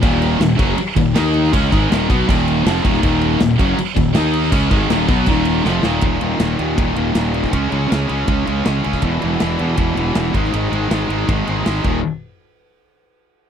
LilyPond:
<<
  \new Staff \with { instrumentName = "Distorted electric guitar" } { \clef bass \time 4/4 \key ees \phrygian \tempo 4 = 160 <ees, bes, ees>4 <ees, bes,>8 <ges, des ges>8 r8 <ees, bes,>8 <ees bes ees'>4 | <des aes des'>8 <aes, ees aes>8 <ees, bes, ees>8 <ces ges ces'>8 <ees, bes, ees>4 <f, c f>8 <ees, bes, ees>8 | <ees, bes, ees>4 <ees, bes,>8 <ges, des ges>8 r8 <ees, bes,>8 <ees bes ees'>4 | <des aes des'>8 <aes, ees aes>8 <ees, bes, ees>8 <ces ges ces'>8 <ees, bes, ees>4 <f, c f>8 <ees, bes, ees>8 |
<ees, bes, ees>8 <ees, bes, ees>8 <ees, bes, ees>8 <ees, bes, ees>8 <ees, bes, ees>8 <ees, bes, ees>8 <ees, bes, ees>8 <ees, bes, ees>8 | <des aes des'>8 <des aes des'>8 <des aes des'>8 <des aes des'>8 <des aes des'>8 <des aes des'>8 <des aes des'>8 <des aes des'>8 | <e, b, e>8 <e, b, e>8 <e, b, e>8 <e, b, e>8 <e, b, e>8 <e, b, e>8 <e, b, e>8 <aes, ees aes>8 | <aes, ees aes>8 <aes, ees aes>8 <aes, ees aes>8 <aes, ees aes>8 <aes, ees aes>8 <aes, ees aes>8 <aes, ees aes>8 <ees, bes, ees>8 |
r1 | }
  \new Staff \with { instrumentName = "Distorted electric guitar" } { \clef bass \time 4/4 \key ees \phrygian <ees, bes, ees>4 <ees, bes,>8 <ges, des ges>8 r8 <ees, bes,>8 <ees bes ees'>4 | <des aes des'>8 <aes, ees aes>8 <ees, bes, ees>8 <ces ges ces'>8 <ees, bes, ees>4 <f, c f>8 <ees, bes, ees>8 | <ees, bes, ees>4 <ees, bes,>8 <ges, des ges>8 r8 <ees, bes,>8 <ees bes ees'>4 | <des aes des'>8 <aes, ees aes>8 <ees, bes, ees>8 <ces ges ces'>8 <ees, bes, ees>4 <f, c f>8 <ees, bes, ees>8 |
<ees, bes, ees>8 <ees, bes, ees>8 <ees, bes, ees>8 <ees, bes, ees>8 <ees, bes, ees>8 <ees, bes, ees>8 <ees, bes, ees>8 <ees, bes, ees>8 | <des aes des'>8 <des aes des'>8 <des aes des'>8 <des aes des'>8 <des aes des'>8 <des aes des'>8 <des aes des'>8 <des aes des'>8 | <e, b, e>8 <e, b, e>8 <e, b, e>8 <e, b, e>8 <e, b, e>8 <e, b, e>8 <e, b, e>8 <aes, ees aes>8 | <aes, ees aes>8 <aes, ees aes>8 <aes, ees aes>8 <aes, ees aes>8 <aes, ees aes>8 <aes, ees aes>8 <aes, ees aes>8 <ees, bes, ees>8 |
r1 | }
  \new Staff \with { instrumentName = "Distorted electric guitar" } { \clef bass \time 4/4 \key ees \phrygian <ees, bes, ees>4 <ees, bes,>8 <ges, des ges>8 r8 <ees, bes,>8 <ees bes ees'>4 | <des aes des'>8 <aes, ees aes>8 <bes, ees>8 <ces ges ces'>8 <ees, bes, ees>4 <f, c f>8 <bes, ees>8 | <ees, bes, ees>4 <ees, bes,>8 <ges, des ges>8 r8 <ees, bes,>8 <ees bes ees'>4 | <des aes des'>8 <aes, ees aes>8 <ees, bes, ees>8 <ces ges ces'>8 <ees, bes, ees>4 <f, c f>8 <ees, bes, ees>8 |
r1 | r1 | r1 | r1 |
r1 | }
  \new Staff \with { instrumentName = "Fingered electric bass" } { \clef bass \time 4/4 \key ees \phrygian ees,,4 ees,,8 ges,,8 r8 ees,,8 ees,4 | des,8 aes,,8 ees,,8 ces,8 ees,,4 f,,8 ees,,8 | ees,,4 ees,,8 ges,,8 r8 ees,,8 ees,4 | des,8 aes,,8 ees,,8 ces,8 ees,,4 f,,8 ees,,8 |
ees,,8 ees,,8 ees,,8 ees,8 ees,,8 ees,,8 ees,,4 | des,8 des,8 des,8 des,8 des,8 des,8 des,8 des,8 | e,,8 e,,8 e,,8 e,8 e,,8 e,,8 e,,8 aes,,8 | aes,,8 aes,,8 aes,,8 aes,,8 aes,,8 aes,,8 aes,,8 ees,,8 |
r1 | }
  \new DrumStaff \with { instrumentName = "Drums" } \drummode { \time 4/4 <cymc bd>8 cymc8 <cymc sn>8 <cymc bd>8 cymc8 <cymc bd>8 <cymc sn>16 sn16 cymc16 sn16 | <cymc bd>8 <cymc bd>8 <cymc sn>8 <cymc bd>8 <cymc bd>8 cymc8 <cymc sn>16 sn16 <cymc bd>16 sn16 | <cymc bd>8 cymc8 <cymc sn>8 <cymc bd>8 cymc8 <cymc bd>8 <cymc sn>8 cymc16 sn16 | <cymc bd>8 <cymc bd>8 <cymc sn>8 <cymc bd>8 <cymc bd>8 cymc8 sn8 sn8 |
<bd cymr>8 cymr8 <cymr sn>8 cymr8 <bd cymr>8 cymr8 <cymr sn>8 cymr16 <bd sn>16 | <bd cymr>8 cymr8 <cymr sn>8 cymr8 <bd cymr>8 cymr8 <cymr sn>8 cymr16 <bd sn>16 | <bd cymr>8 cymr8 <cymr sn>8 cymr8 <bd cymr>8 cymr8 <cymr sn>8 <bd cymr>16 sn16 | cymr8 cymr8 <cymr sn>8 cymr8 <bd cymr>8 cymr8 <cymr sn>16 sn16 <cymc bd>8 |
r4 r4 r4 r4 | }
>>